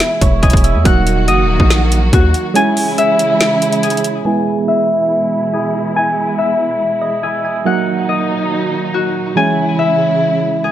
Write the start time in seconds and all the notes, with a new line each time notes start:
Already playing: B2 E3 G#3 B3 E4 G#4 E5 G#5
0.00 snare, closed hi-hat
0.21 E1 C#5, kick, closed hi-hat
0.42 E1 G#4 D#5, kick, closed hi-hat
0.50 E1, kick, closed hi-hat
0.57 closed hi-hat
0.64 E5, closed hi-hat
0.75 E2
0.84 D#1 D#3 F#3 A#3 D#4 F#4 F#5, kick, closed hi-hat
1.07 closed hi-hat
1.28 F#1 D#5, closed hi-hat
1.44 D#1
1.60 A#1, kick
1.70 snare, closed hi-hat
1.92 closed hi-hat
2.13 D#2 F#4, kick, closed hi-hat
2.34 closed hi-hat
2.54 C#3 E3 G#3 C#4 E4 G#4 G#5, closed hi-hat
2.77 open hi-hat
2.98 E5, closed hi-hat
3.19 closed hi-hat
3.41 snare, closed hi-hat
3.62 closed hi-hat
3.72 closed hi-hat
3.83 G#4, closed hi-hat
3.90 closed hi-hat
3.97 closed hi-hat
4.04 closed hi-hat
4.25 B2 E3 G#3 B3 E4 G#4 G#5
4.68 E5
5.53 G#4
5.96 G#5
6.38 E5
7.01 D#5
7.23 G#4 E5
7.45 G#5
7.65 A#2 D#3 F#3 A#3 D#4 F#4 F#5
8.09 D#5
8.94 F#4
9.36 C#3 E3 G#3 C#4 E4 G#5
9.79 E5
10.64 G#4